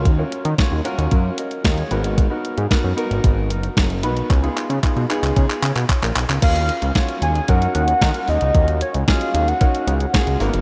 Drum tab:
CC |----------------|----------------|----------------|x---------------|
HH |x-xxx-xxx-xxxxxx|x-xxx-xxx-xxxxxx|xxxxxxxxx-xxxxox|xxxxxxxxxxxxxxox|
CP |----------------|----------------|x-x-x-xx-xxxxxxx|----------------|
SD |----o-------o---|----o-------o---|----------------|----o-------o---|
BD |o---o---o---o---|o---o---o---o---|o---o---o---o---|o---o---o---o---|

CC |----------------|
HH |xxxxxxxxxxxxxxox|
CP |----------------|
SD |----o-------o---|
BD |o---o---o---o---|